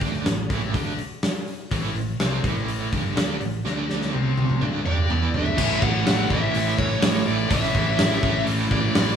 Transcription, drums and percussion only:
0.01 kick, open hi-hat
0.14 snare
0.26 snare, open hi-hat
0.50 kick, open hi-hat
0.74 kick, open hi-hat
0.98 open hi-hat
1.23 snare, open hi-hat
1.48 open hi-hat
1.71 kick, open hi-hat
1.96 open hi-hat
2.20 snare, open hi-hat
2.44 kick, open hi-hat
2.68 open hi-hat
2.93 kick, open hi-hat
3.17 snare, open hi-hat
3.41 open hi-hat
3.65 snare
3.89 snare
4.02 snare
4.13 high tom
4.37 high tom
4.50 mid tom
4.62 mid tom
4.86 mid tom
4.98 mid tom
5.10 mid tom
5.34 floor tom
5.46 floor tom
5.58 kick, crash
5.71 snare
5.82 kick
6.07 snare, open hi-hat
6.30 kick
6.54 open hi-hat
6.79 kick
7.02 snare, open hi-hat
7.50 kick, open hi-hat
7.63 snare
7.75 kick
7.99 snare, open hi-hat
8.23 kick
8.47 open hi-hat
8.71 kick
8.95 snare, open hi-hat

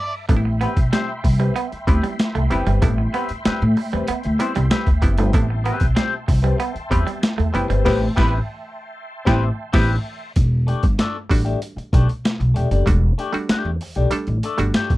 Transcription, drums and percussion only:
0.29 kick, closed hi-hat
0.61 closed hi-hat
0.77 kick, closed hi-hat
0.93 snare, closed hi-hat
1.24 kick, open hi-hat
1.40 closed hi-hat
1.56 closed hi-hat
1.72 closed hi-hat
1.87 kick, closed hi-hat
2.04 closed hi-hat
2.19 snare, closed hi-hat
2.35 closed hi-hat
2.51 closed hi-hat
2.67 closed hi-hat
2.82 kick, closed hi-hat
3.14 closed hi-hat
3.29 closed hi-hat
3.45 snare, closed hi-hat
3.77 open hi-hat
3.92 closed hi-hat
4.07 closed hi-hat
4.23 closed hi-hat
4.40 closed hi-hat
4.55 closed hi-hat
4.71 snare, closed hi-hat
4.87 kick, closed hi-hat
5.02 kick, closed hi-hat
5.18 closed hi-hat
5.33 kick, closed hi-hat
5.65 closed hi-hat
5.80 kick, closed hi-hat
5.96 snare, closed hi-hat
6.28 kick, open hi-hat
6.44 closed hi-hat
6.60 closed hi-hat
6.76 closed hi-hat
6.91 kick, closed hi-hat
7.08 closed hi-hat
7.23 snare, closed hi-hat
7.40 closed hi-hat
7.55 closed hi-hat
7.70 closed hi-hat
7.86 kick, snare, crash
8.17 kick, snare
9.27 kick, snare
9.73 kick, snare, crash
10.36 kick, closed hi-hat
10.68 closed hi-hat
10.83 kick, closed hi-hat
10.99 snare, closed hi-hat
11.30 kick, open hi-hat
11.46 closed hi-hat
11.62 closed hi-hat
11.78 closed hi-hat
11.93 kick, closed hi-hat
12.09 closed hi-hat
12.25 snare, closed hi-hat
12.41 closed hi-hat
12.56 closed hi-hat
12.71 closed hi-hat
12.87 kick, closed hi-hat
13.19 closed hi-hat
13.34 closed hi-hat
13.49 snare, closed hi-hat
13.81 open hi-hat
13.95 closed hi-hat
14.11 closed hi-hat
14.27 closed hi-hat
14.43 closed hi-hat
14.58 closed hi-hat
14.74 snare, closed hi-hat
14.90 kick, closed hi-hat

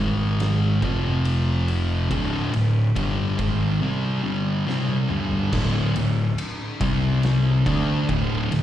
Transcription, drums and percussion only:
0.40 snare, ride
0.82 kick, ride
1.25 ride
1.68 ride
2.11 kick, ride
2.54 ride
2.96 kick, ride
3.39 kick, ride
4.69 snare
4.89 high tom
5.11 mid tom
5.32 floor tom
5.53 kick, crash
5.96 ride
6.38 ride
6.81 kick, ride
7.23 snare, ride
7.66 kick, ride
8.09 kick, ride
8.52 snare, ride

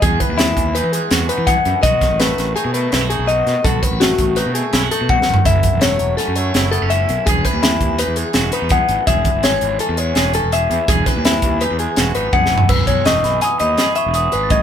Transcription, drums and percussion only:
0.02 kick, closed hi-hat
0.20 kick, closed hi-hat
0.39 snare, closed hi-hat
0.57 kick, closed hi-hat
0.75 closed hi-hat
0.93 closed hi-hat
1.11 snare, closed hi-hat
1.29 closed hi-hat
1.47 kick, closed hi-hat
1.65 closed hi-hat
1.83 kick, closed hi-hat
2.01 kick, snare, closed hi-hat
2.20 snare, closed hi-hat
2.38 snare, closed hi-hat
2.56 closed hi-hat
2.74 closed hi-hat
2.92 snare, closed hi-hat
3.10 closed hi-hat
3.28 closed hi-hat
3.47 snare, closed hi-hat
3.65 kick, closed hi-hat
3.83 kick, closed hi-hat
4.01 snare, closed hi-hat
4.18 kick, closed hi-hat
4.36 snare, closed hi-hat
4.55 closed hi-hat
4.73 snare, closed hi-hat
4.91 closed hi-hat
5.09 kick, high tom
5.22 snare
5.34 floor tom
5.45 kick, closed hi-hat
5.63 kick, closed hi-hat
5.81 snare, closed hi-hat
5.99 closed hi-hat
6.18 snare, closed hi-hat
6.36 closed hi-hat
6.54 snare, closed hi-hat
6.73 closed hi-hat
6.90 closed hi-hat
7.09 closed hi-hat
7.27 kick, closed hi-hat
7.45 kick, closed hi-hat
7.63 snare, closed hi-hat
7.81 kick, closed hi-hat
7.99 closed hi-hat
8.16 closed hi-hat
8.33 snare, closed hi-hat
8.52 closed hi-hat
8.69 kick, closed hi-hat
8.89 closed hi-hat
9.07 kick, closed hi-hat
9.25 kick, closed hi-hat
9.43 snare, closed hi-hat
9.61 closed hi-hat
9.79 closed hi-hat
9.97 closed hi-hat
10.15 snare, closed hi-hat
10.33 closed hi-hat
10.52 closed hi-hat
10.71 closed hi-hat
10.88 kick, closed hi-hat
11.06 kick, snare, closed hi-hat
11.25 snare, closed hi-hat
11.42 kick, closed hi-hat
11.61 closed hi-hat
11.79 closed hi-hat
11.96 snare, closed hi-hat
12.15 closed hi-hat
12.33 kick, high tom
12.46 snare
12.58 floor tom
12.69 kick, crash
12.87 kick, closed hi-hat
13.05 snare, closed hi-hat
13.24 snare, closed hi-hat
13.41 snare, closed hi-hat
13.59 closed hi-hat
13.78 snare, closed hi-hat
13.95 closed hi-hat
14.14 closed hi-hat
14.32 closed hi-hat
14.50 kick, closed hi-hat

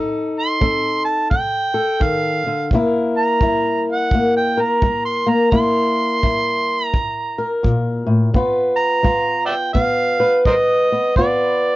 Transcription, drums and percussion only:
0.61 kick
1.31 kick
2.01 kick
2.71 kick
3.41 kick
4.11 kick
4.82 kick
5.52 kick
6.23 kick
6.94 kick
7.64 kick
8.35 kick
9.05 kick
9.75 kick
10.45 kick
11.16 kick

